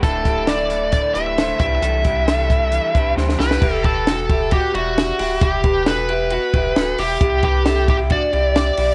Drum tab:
CC |----------------|----------------|x---------------|----------------|
RD |----------------|----------------|--x-x-x-x-x-x-x-|x-x-x-x-x-x-x-x-|
HH |x-x-x-x-x-x-x-x-|x-x-x-x-x-x-----|--------------o-|p-------------o-|
SD |----o-------o---|----o-------oooo|----o-------o---|----o-------o---|
BD |o-o-----o-----o-|--o---o---o-----|o-o---o-o-------|o-o-------o-----|

CC |----------------|
RD |x-x-x-x-x-x-x-x-|
HH |--------------o-|
SD |----o-------o---|
BD |o-o---o-o-------|